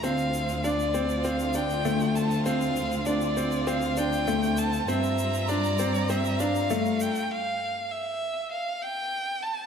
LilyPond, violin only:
\new Staff \with { instrumentName = "Violin" } { \time 4/4 \key d \minor \tempo 4 = 99 f''4 d''4 f''8 g''4 a''8 | f''4 d''4 f''8 g''4 a''8 | e''4 d''4 e''8 f''4 g''8 | f''4 e''4 f''8 g''4 a''8 | }